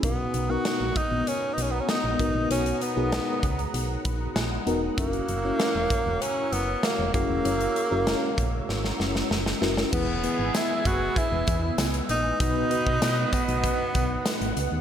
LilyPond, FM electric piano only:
<<
  \new Staff \with { instrumentName = "FM electric piano" } { \time 4/4 \key b \major \tempo 4 = 97 <b dis' fis' ais'>8. <b dis' fis' ais'>4.~ <b dis' fis' ais'>16 r4 <b dis' fis' ais'>8 | <b dis' fis' cis''>8. <b dis' fis' gis'>4.~ <b dis' fis' gis'>16 b''16 ais''16 gis''16 fis''16 <b dis' fis' ais' dis''>8 | <cis' e' fis' ais'>8. <cis' e' fis' cis''>4.~ <cis' e' fis' cis''>16 r4 <cis' e' fis' gis'>8 | <cis' e' fis' cis''>8. <cis' e' fis' ais'>4.~ <cis' e' fis' ais'>16 r4 <cis' e' fis' ais'>8 |
<b e' gis' b'>8 <b e' gis' b'>4.~ <b e' gis' b'>16 r4. r16 | <b dis' fis' b'>8 <b dis' fis' b'>4.~ <b dis' fis' b'>16 r4. r16 | }
  \new Staff \with { instrumentName = "FM electric piano" } { \clef bass \time 4/4 \key b \major b,4. r2 r8 | b,4. r2 r8 | r1 | r1 |
e4. r2 r8 | b,4. r2 r8 | }
>>